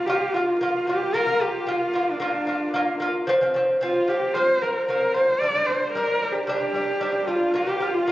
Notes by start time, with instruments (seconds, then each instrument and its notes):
0.06 lute A#3 F4, horsehead fiddle G4
0.34 lute A#3 F4, horsehead fiddle F4
0.60 lute A#3 F4, horsehead fiddle F4
0.86 lute A#3 F4, horsehead fiddle G4
1.14 lute A#3 F4, horsehead fiddle A#4
1.27 lute A#3 F4
1.40 lute A#3 F4, horsehead fiddle G4
1.67 lute A#3 F4, horsehead fiddle F4
1.94 lute A#3 F4
2.10 horsehead fiddle D4
2.20 lute A#3 F4
2.24 horsehead fiddle D4
2.47 lute A#3 F4
2.74 lute A#3 F4
3.00 lute A#3 F4
3.27 lute F3 C4
3.41 lute F3 C4
3.54 lute F3 C4
3.81 lute F3 C4, horsehead fiddle F4
4.08 lute F3 C4, horsehead fiddle G4
4.34 lute F3 C4, horsehead fiddle C5
4.62 lute F3 C4, horsehead fiddle A#4
4.87 lute F3 C4, horsehead fiddle A#4
5.14 lute F3 C4, horsehead fiddle C5
5.40 lute G3 D4, horsehead fiddle D5
5.55 lute G3 D4
5.66 lute G3 D4, horsehead fiddle C5
5.93 lute G3, horsehead fiddle A#4
5.97 lute D4
6.22 lute G3 D4
6.32 horsehead fiddle G4
6.47 lute G3 D4, horsehead fiddle G4
6.74 lute G3 D4
7.01 lute G3 D4
7.27 lute G3 D4, horsehead fiddle F4
7.54 lute A#3 F4, horsehead fiddle G4
7.67 lute A#3 F4
7.80 lute A#3 F4
7.94 horsehead fiddle F4
8.07 lute A#3